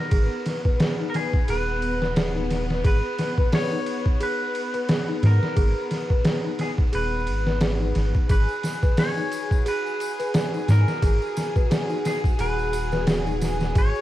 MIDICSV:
0, 0, Header, 1, 7, 480
1, 0, Start_track
1, 0, Key_signature, 5, "minor"
1, 0, Tempo, 681818
1, 82, Time_signature, 4, 2, 24, 8
1, 9864, End_track
2, 0, Start_track
2, 0, Title_t, "Clean electric guitar"
2, 0, Program_c, 0, 27
2, 0, Note_on_c, 0, 70, 86
2, 540, Note_off_c, 0, 70, 0
2, 772, Note_on_c, 0, 70, 68
2, 808, Note_off_c, 0, 70, 0
2, 815, Note_on_c, 0, 68, 83
2, 1056, Note_off_c, 0, 68, 0
2, 1056, Note_on_c, 0, 71, 115
2, 1501, Note_off_c, 0, 71, 0
2, 2015, Note_on_c, 0, 71, 105
2, 2495, Note_off_c, 0, 71, 0
2, 2498, Note_on_c, 0, 73, 102
2, 2975, Note_off_c, 0, 73, 0
2, 2977, Note_on_c, 0, 71, 108
2, 3698, Note_off_c, 0, 71, 0
2, 3701, Note_on_c, 0, 70, 88
2, 4383, Note_off_c, 0, 70, 0
2, 4654, Note_on_c, 0, 68, 79
2, 4717, Note_off_c, 0, 68, 0
2, 4892, Note_on_c, 0, 71, 109
2, 5339, Note_off_c, 0, 71, 0
2, 5851, Note_on_c, 0, 71, 97
2, 6329, Note_off_c, 0, 71, 0
2, 6331, Note_on_c, 0, 73, 96
2, 6779, Note_off_c, 0, 73, 0
2, 6816, Note_on_c, 0, 71, 105
2, 7534, Note_off_c, 0, 71, 0
2, 7537, Note_on_c, 0, 70, 80
2, 8221, Note_off_c, 0, 70, 0
2, 8493, Note_on_c, 0, 68, 88
2, 8733, Note_on_c, 0, 71, 121
2, 8735, Note_off_c, 0, 68, 0
2, 9180, Note_off_c, 0, 71, 0
2, 9703, Note_on_c, 0, 73, 101
2, 9864, Note_off_c, 0, 73, 0
2, 9864, End_track
3, 0, Start_track
3, 0, Title_t, "Celesta"
3, 0, Program_c, 1, 8
3, 0, Control_c, 1, 64, 127
3, 0, Note_on_c, 1, 63, 71
3, 0, Note_on_c, 1, 68, 102
3, 0, Note_on_c, 1, 71, 71
3, 86, Note_off_c, 1, 68, 0
3, 86, Note_on_c, 1, 68, 106
3, 446, Note_off_c, 1, 68, 0
3, 459, Note_off_c, 1, 71, 0
3, 459, Note_on_c, 1, 71, 79
3, 552, Note_off_c, 1, 71, 0
3, 565, Note_on_c, 1, 68, 109
3, 686, Note_off_c, 1, 68, 0
3, 702, Note_off_c, 1, 63, 0
3, 702, Note_on_c, 1, 63, 73
3, 799, Note_off_c, 1, 63, 0
3, 1046, Note_on_c, 1, 68, 93
3, 1406, Note_off_c, 1, 68, 0
3, 1419, Note_on_c, 1, 71, 72
3, 1512, Note_off_c, 1, 71, 0
3, 1524, Note_on_c, 1, 68, 100
3, 1645, Note_off_c, 1, 68, 0
3, 1656, Note_on_c, 1, 63, 73
3, 1756, Note_off_c, 1, 63, 0
3, 2001, Note_on_c, 1, 68, 108
3, 2011, Control_c, 1, 64, 0
3, 2140, Control_c, 1, 64, 127
3, 2364, Note_off_c, 1, 68, 0
3, 2381, Note_on_c, 1, 71, 80
3, 2473, Note_off_c, 1, 71, 0
3, 2480, Note_on_c, 1, 68, 102
3, 2603, Note_off_c, 1, 68, 0
3, 2618, Note_on_c, 1, 63, 76
3, 2717, Note_off_c, 1, 63, 0
3, 2959, Note_on_c, 1, 68, 95
3, 3323, Note_off_c, 1, 68, 0
3, 3334, Note_on_c, 1, 71, 76
3, 3430, Note_off_c, 1, 71, 0
3, 3442, Note_on_c, 1, 68, 98
3, 3564, Note_off_c, 1, 68, 0
3, 3576, Note_on_c, 1, 63, 74
3, 3676, Note_off_c, 1, 63, 0
3, 3916, Note_on_c, 1, 68, 107
3, 4281, Note_off_c, 1, 68, 0
3, 4293, Note_on_c, 1, 71, 77
3, 4390, Note_off_c, 1, 71, 0
3, 4395, Note_on_c, 1, 68, 104
3, 4521, Note_off_c, 1, 68, 0
3, 4532, Note_on_c, 1, 63, 73
3, 4634, Note_off_c, 1, 63, 0
3, 4876, Note_on_c, 1, 68, 86
3, 5241, Note_off_c, 1, 68, 0
3, 5255, Note_on_c, 1, 71, 74
3, 5350, Note_off_c, 1, 71, 0
3, 5356, Note_on_c, 1, 68, 104
3, 5481, Note_off_c, 1, 68, 0
3, 5490, Note_on_c, 1, 63, 69
3, 5593, Note_off_c, 1, 63, 0
3, 5837, Note_on_c, 1, 68, 108
3, 5850, Control_c, 1, 64, 0
3, 5979, Control_c, 1, 64, 127
3, 6202, Note_off_c, 1, 68, 0
3, 6214, Note_on_c, 1, 71, 75
3, 6310, Note_off_c, 1, 71, 0
3, 6319, Note_on_c, 1, 68, 105
3, 6443, Note_off_c, 1, 68, 0
3, 6455, Note_on_c, 1, 63, 71
3, 6556, Note_off_c, 1, 63, 0
3, 6799, Note_on_c, 1, 68, 89
3, 7163, Note_off_c, 1, 68, 0
3, 7176, Note_on_c, 1, 71, 77
3, 7271, Note_off_c, 1, 71, 0
3, 7281, Note_on_c, 1, 68, 105
3, 7404, Note_off_c, 1, 68, 0
3, 7418, Note_on_c, 1, 63, 68
3, 7517, Note_off_c, 1, 63, 0
3, 7761, Note_on_c, 1, 68, 106
3, 8124, Note_off_c, 1, 68, 0
3, 8137, Note_on_c, 1, 71, 76
3, 8231, Note_off_c, 1, 71, 0
3, 8239, Note_on_c, 1, 68, 108
3, 8363, Note_off_c, 1, 68, 0
3, 8375, Note_on_c, 1, 63, 81
3, 8475, Note_off_c, 1, 63, 0
3, 8720, Note_on_c, 1, 68, 99
3, 9084, Note_off_c, 1, 68, 0
3, 9099, Note_on_c, 1, 71, 75
3, 9192, Note_off_c, 1, 71, 0
3, 9201, Note_on_c, 1, 68, 101
3, 9324, Note_off_c, 1, 68, 0
3, 9338, Note_on_c, 1, 63, 72
3, 9437, Note_off_c, 1, 63, 0
3, 9683, Note_on_c, 1, 68, 111
3, 9692, Control_c, 1, 64, 0
3, 9807, Control_c, 1, 64, 127
3, 9864, Note_off_c, 1, 68, 0
3, 9864, End_track
4, 0, Start_track
4, 0, Title_t, "Synth texture"
4, 0, Program_c, 2, 99
4, 5840, Note_on_c, 2, 66, 85
4, 9864, Note_off_c, 2, 66, 0
4, 9864, End_track
5, 0, Start_track
5, 0, Title_t, "String section"
5, 0, Program_c, 3, 48
5, 0, Note_on_c, 3, 59, 84
5, 5843, Note_on_c, 3, 68, 81
5, 5853, Note_off_c, 3, 59, 0
5, 9864, Note_off_c, 3, 68, 0
5, 9864, End_track
6, 0, Start_track
6, 0, Title_t, "Sub bass"
6, 0, Program_c, 4, 38
6, 81, Note_on_c, 4, 32, 99
6, 201, Note_off_c, 4, 32, 0
6, 1044, Note_on_c, 4, 27, 101
6, 1983, Note_off_c, 4, 27, 0
6, 2002, Note_on_c, 4, 32, 99
6, 2121, Note_off_c, 4, 32, 0
6, 3679, Note_on_c, 4, 44, 91
6, 3800, Note_off_c, 4, 44, 0
6, 3919, Note_on_c, 4, 32, 100
6, 4040, Note_off_c, 4, 32, 0
6, 4883, Note_on_c, 4, 27, 106
6, 5117, Note_on_c, 4, 32, 77
6, 5128, Note_off_c, 4, 27, 0
6, 5580, Note_off_c, 4, 32, 0
6, 5599, Note_on_c, 4, 32, 99
6, 5720, Note_off_c, 4, 32, 0
6, 5839, Note_on_c, 4, 32, 102
6, 5960, Note_off_c, 4, 32, 0
6, 7520, Note_on_c, 4, 44, 84
6, 7640, Note_off_c, 4, 44, 0
6, 7760, Note_on_c, 4, 32, 106
6, 7880, Note_off_c, 4, 32, 0
6, 8722, Note_on_c, 4, 27, 95
6, 9662, Note_off_c, 4, 27, 0
6, 9683, Note_on_c, 4, 32, 97
6, 9802, Note_off_c, 4, 32, 0
6, 9864, End_track
7, 0, Start_track
7, 0, Title_t, "Drums"
7, 80, Note_on_c, 9, 51, 89
7, 82, Note_on_c, 9, 36, 111
7, 151, Note_off_c, 9, 51, 0
7, 152, Note_off_c, 9, 36, 0
7, 322, Note_on_c, 9, 51, 74
7, 326, Note_on_c, 9, 38, 38
7, 393, Note_off_c, 9, 51, 0
7, 397, Note_off_c, 9, 38, 0
7, 457, Note_on_c, 9, 36, 93
7, 528, Note_off_c, 9, 36, 0
7, 561, Note_on_c, 9, 51, 84
7, 565, Note_on_c, 9, 38, 123
7, 631, Note_off_c, 9, 51, 0
7, 636, Note_off_c, 9, 38, 0
7, 804, Note_on_c, 9, 51, 74
7, 808, Note_on_c, 9, 38, 47
7, 874, Note_off_c, 9, 51, 0
7, 878, Note_off_c, 9, 38, 0
7, 939, Note_on_c, 9, 36, 93
7, 1009, Note_off_c, 9, 36, 0
7, 1042, Note_on_c, 9, 51, 87
7, 1112, Note_off_c, 9, 51, 0
7, 1283, Note_on_c, 9, 51, 64
7, 1353, Note_off_c, 9, 51, 0
7, 1422, Note_on_c, 9, 38, 43
7, 1492, Note_off_c, 9, 38, 0
7, 1523, Note_on_c, 9, 51, 85
7, 1527, Note_on_c, 9, 38, 108
7, 1594, Note_off_c, 9, 51, 0
7, 1598, Note_off_c, 9, 38, 0
7, 1763, Note_on_c, 9, 51, 69
7, 1768, Note_on_c, 9, 38, 43
7, 1834, Note_off_c, 9, 51, 0
7, 1838, Note_off_c, 9, 38, 0
7, 1903, Note_on_c, 9, 38, 46
7, 1973, Note_off_c, 9, 38, 0
7, 2002, Note_on_c, 9, 36, 116
7, 2003, Note_on_c, 9, 51, 89
7, 2072, Note_off_c, 9, 36, 0
7, 2073, Note_off_c, 9, 51, 0
7, 2242, Note_on_c, 9, 51, 74
7, 2246, Note_on_c, 9, 38, 41
7, 2312, Note_off_c, 9, 51, 0
7, 2317, Note_off_c, 9, 38, 0
7, 2377, Note_on_c, 9, 36, 93
7, 2448, Note_off_c, 9, 36, 0
7, 2482, Note_on_c, 9, 46, 82
7, 2486, Note_on_c, 9, 38, 121
7, 2552, Note_off_c, 9, 46, 0
7, 2556, Note_off_c, 9, 38, 0
7, 2720, Note_on_c, 9, 51, 74
7, 2791, Note_off_c, 9, 51, 0
7, 2856, Note_on_c, 9, 36, 94
7, 2927, Note_off_c, 9, 36, 0
7, 2961, Note_on_c, 9, 51, 90
7, 3031, Note_off_c, 9, 51, 0
7, 3202, Note_on_c, 9, 51, 70
7, 3272, Note_off_c, 9, 51, 0
7, 3336, Note_on_c, 9, 51, 46
7, 3407, Note_off_c, 9, 51, 0
7, 3440, Note_on_c, 9, 51, 88
7, 3444, Note_on_c, 9, 38, 107
7, 3510, Note_off_c, 9, 51, 0
7, 3514, Note_off_c, 9, 38, 0
7, 3681, Note_on_c, 9, 51, 71
7, 3685, Note_on_c, 9, 38, 56
7, 3751, Note_off_c, 9, 51, 0
7, 3756, Note_off_c, 9, 38, 0
7, 3821, Note_on_c, 9, 38, 45
7, 3892, Note_off_c, 9, 38, 0
7, 3918, Note_on_c, 9, 51, 90
7, 3920, Note_on_c, 9, 36, 115
7, 3989, Note_off_c, 9, 51, 0
7, 3990, Note_off_c, 9, 36, 0
7, 4159, Note_on_c, 9, 51, 73
7, 4163, Note_on_c, 9, 38, 39
7, 4229, Note_off_c, 9, 51, 0
7, 4234, Note_off_c, 9, 38, 0
7, 4295, Note_on_c, 9, 36, 92
7, 4365, Note_off_c, 9, 36, 0
7, 4397, Note_on_c, 9, 51, 83
7, 4401, Note_on_c, 9, 38, 110
7, 4467, Note_off_c, 9, 51, 0
7, 4471, Note_off_c, 9, 38, 0
7, 4637, Note_on_c, 9, 51, 71
7, 4642, Note_on_c, 9, 38, 47
7, 4708, Note_off_c, 9, 51, 0
7, 4712, Note_off_c, 9, 38, 0
7, 4774, Note_on_c, 9, 36, 92
7, 4845, Note_off_c, 9, 36, 0
7, 4878, Note_on_c, 9, 51, 88
7, 4948, Note_off_c, 9, 51, 0
7, 5117, Note_on_c, 9, 51, 69
7, 5187, Note_off_c, 9, 51, 0
7, 5257, Note_on_c, 9, 38, 44
7, 5327, Note_off_c, 9, 38, 0
7, 5355, Note_on_c, 9, 51, 80
7, 5360, Note_on_c, 9, 38, 112
7, 5426, Note_off_c, 9, 51, 0
7, 5430, Note_off_c, 9, 38, 0
7, 5597, Note_on_c, 9, 51, 61
7, 5601, Note_on_c, 9, 38, 34
7, 5668, Note_off_c, 9, 51, 0
7, 5672, Note_off_c, 9, 38, 0
7, 5735, Note_on_c, 9, 36, 86
7, 5806, Note_off_c, 9, 36, 0
7, 5838, Note_on_c, 9, 51, 89
7, 5840, Note_on_c, 9, 36, 108
7, 5840, Note_on_c, 9, 54, 54
7, 5909, Note_off_c, 9, 51, 0
7, 5910, Note_off_c, 9, 36, 0
7, 5911, Note_off_c, 9, 54, 0
7, 5973, Note_on_c, 9, 54, 27
7, 6043, Note_off_c, 9, 54, 0
7, 6078, Note_on_c, 9, 51, 72
7, 6082, Note_on_c, 9, 38, 37
7, 6088, Note_on_c, 9, 54, 102
7, 6148, Note_off_c, 9, 51, 0
7, 6152, Note_off_c, 9, 38, 0
7, 6158, Note_off_c, 9, 54, 0
7, 6215, Note_on_c, 9, 36, 98
7, 6215, Note_on_c, 9, 54, 36
7, 6285, Note_off_c, 9, 36, 0
7, 6285, Note_off_c, 9, 54, 0
7, 6318, Note_on_c, 9, 46, 79
7, 6318, Note_on_c, 9, 54, 53
7, 6322, Note_on_c, 9, 38, 113
7, 6388, Note_off_c, 9, 46, 0
7, 6389, Note_off_c, 9, 54, 0
7, 6392, Note_off_c, 9, 38, 0
7, 6457, Note_on_c, 9, 54, 25
7, 6528, Note_off_c, 9, 54, 0
7, 6559, Note_on_c, 9, 51, 74
7, 6566, Note_on_c, 9, 54, 87
7, 6629, Note_off_c, 9, 51, 0
7, 6636, Note_off_c, 9, 54, 0
7, 6696, Note_on_c, 9, 36, 91
7, 6702, Note_on_c, 9, 54, 40
7, 6766, Note_off_c, 9, 36, 0
7, 6772, Note_off_c, 9, 54, 0
7, 6800, Note_on_c, 9, 51, 91
7, 6808, Note_on_c, 9, 54, 53
7, 6871, Note_off_c, 9, 51, 0
7, 6879, Note_off_c, 9, 54, 0
7, 6946, Note_on_c, 9, 54, 24
7, 7016, Note_off_c, 9, 54, 0
7, 7041, Note_on_c, 9, 51, 66
7, 7048, Note_on_c, 9, 54, 85
7, 7111, Note_off_c, 9, 51, 0
7, 7119, Note_off_c, 9, 54, 0
7, 7178, Note_on_c, 9, 51, 47
7, 7180, Note_on_c, 9, 54, 38
7, 7248, Note_off_c, 9, 51, 0
7, 7250, Note_off_c, 9, 54, 0
7, 7280, Note_on_c, 9, 51, 82
7, 7284, Note_on_c, 9, 38, 117
7, 7287, Note_on_c, 9, 54, 59
7, 7350, Note_off_c, 9, 51, 0
7, 7354, Note_off_c, 9, 38, 0
7, 7357, Note_off_c, 9, 54, 0
7, 7420, Note_on_c, 9, 54, 26
7, 7490, Note_off_c, 9, 54, 0
7, 7520, Note_on_c, 9, 51, 65
7, 7525, Note_on_c, 9, 38, 61
7, 7526, Note_on_c, 9, 54, 88
7, 7591, Note_off_c, 9, 51, 0
7, 7595, Note_off_c, 9, 38, 0
7, 7596, Note_off_c, 9, 54, 0
7, 7660, Note_on_c, 9, 38, 48
7, 7661, Note_on_c, 9, 54, 36
7, 7731, Note_off_c, 9, 38, 0
7, 7731, Note_off_c, 9, 54, 0
7, 7761, Note_on_c, 9, 36, 115
7, 7761, Note_on_c, 9, 51, 89
7, 7763, Note_on_c, 9, 54, 52
7, 7832, Note_off_c, 9, 36, 0
7, 7832, Note_off_c, 9, 51, 0
7, 7833, Note_off_c, 9, 54, 0
7, 7899, Note_on_c, 9, 54, 22
7, 7970, Note_off_c, 9, 54, 0
7, 8002, Note_on_c, 9, 54, 93
7, 8003, Note_on_c, 9, 51, 70
7, 8008, Note_on_c, 9, 38, 40
7, 8072, Note_off_c, 9, 54, 0
7, 8074, Note_off_c, 9, 51, 0
7, 8078, Note_off_c, 9, 38, 0
7, 8137, Note_on_c, 9, 36, 94
7, 8140, Note_on_c, 9, 54, 34
7, 8207, Note_off_c, 9, 36, 0
7, 8210, Note_off_c, 9, 54, 0
7, 8244, Note_on_c, 9, 51, 96
7, 8248, Note_on_c, 9, 38, 111
7, 8250, Note_on_c, 9, 54, 53
7, 8314, Note_off_c, 9, 51, 0
7, 8319, Note_off_c, 9, 38, 0
7, 8320, Note_off_c, 9, 54, 0
7, 8375, Note_on_c, 9, 54, 25
7, 8445, Note_off_c, 9, 54, 0
7, 8484, Note_on_c, 9, 51, 72
7, 8484, Note_on_c, 9, 54, 82
7, 8488, Note_on_c, 9, 38, 51
7, 8554, Note_off_c, 9, 51, 0
7, 8555, Note_off_c, 9, 54, 0
7, 8558, Note_off_c, 9, 38, 0
7, 8617, Note_on_c, 9, 36, 95
7, 8624, Note_on_c, 9, 54, 36
7, 8688, Note_off_c, 9, 36, 0
7, 8694, Note_off_c, 9, 54, 0
7, 8722, Note_on_c, 9, 51, 89
7, 8722, Note_on_c, 9, 54, 54
7, 8792, Note_off_c, 9, 51, 0
7, 8793, Note_off_c, 9, 54, 0
7, 8864, Note_on_c, 9, 54, 24
7, 8935, Note_off_c, 9, 54, 0
7, 8963, Note_on_c, 9, 51, 73
7, 8963, Note_on_c, 9, 54, 94
7, 9033, Note_off_c, 9, 51, 0
7, 9034, Note_off_c, 9, 54, 0
7, 9095, Note_on_c, 9, 54, 33
7, 9102, Note_on_c, 9, 38, 44
7, 9165, Note_off_c, 9, 54, 0
7, 9173, Note_off_c, 9, 38, 0
7, 9201, Note_on_c, 9, 51, 87
7, 9205, Note_on_c, 9, 38, 111
7, 9212, Note_on_c, 9, 54, 54
7, 9271, Note_off_c, 9, 51, 0
7, 9275, Note_off_c, 9, 38, 0
7, 9282, Note_off_c, 9, 54, 0
7, 9341, Note_on_c, 9, 54, 25
7, 9411, Note_off_c, 9, 54, 0
7, 9443, Note_on_c, 9, 51, 71
7, 9443, Note_on_c, 9, 54, 95
7, 9448, Note_on_c, 9, 38, 41
7, 9514, Note_off_c, 9, 51, 0
7, 9514, Note_off_c, 9, 54, 0
7, 9518, Note_off_c, 9, 38, 0
7, 9576, Note_on_c, 9, 54, 38
7, 9582, Note_on_c, 9, 38, 44
7, 9646, Note_off_c, 9, 54, 0
7, 9652, Note_off_c, 9, 38, 0
7, 9682, Note_on_c, 9, 36, 115
7, 9683, Note_on_c, 9, 51, 93
7, 9692, Note_on_c, 9, 54, 44
7, 9752, Note_off_c, 9, 36, 0
7, 9753, Note_off_c, 9, 51, 0
7, 9763, Note_off_c, 9, 54, 0
7, 9825, Note_on_c, 9, 54, 23
7, 9864, Note_off_c, 9, 54, 0
7, 9864, End_track
0, 0, End_of_file